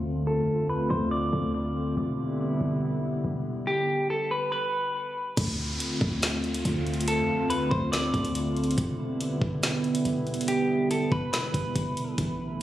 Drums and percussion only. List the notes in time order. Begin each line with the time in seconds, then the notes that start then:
5.37 kick, closed hi-hat, crash
5.80 closed hi-hat
6.01 kick
6.23 snare, closed hi-hat
6.44 closed hi-hat
6.54 closed hi-hat
6.65 closed hi-hat
6.87 closed hi-hat
6.94 closed hi-hat
7.01 closed hi-hat
7.08 closed hi-hat
7.50 closed hi-hat
7.71 kick
7.93 snare, closed hi-hat
8.14 kick, closed hi-hat
8.25 closed hi-hat
8.35 closed hi-hat
8.57 closed hi-hat
8.64 closed hi-hat
8.71 closed hi-hat
8.78 kick, closed hi-hat
9.21 closed hi-hat
9.42 kick
9.63 snare, closed hi-hat
9.84 closed hi-hat
9.95 closed hi-hat
10.05 closed hi-hat
10.27 closed hi-hat
10.34 closed hi-hat
10.41 closed hi-hat
10.48 closed hi-hat
10.91 closed hi-hat
11.12 kick
11.33 snare, closed hi-hat
11.54 kick, closed hi-hat
11.76 kick, closed hi-hat
11.97 closed hi-hat
12.18 kick, closed hi-hat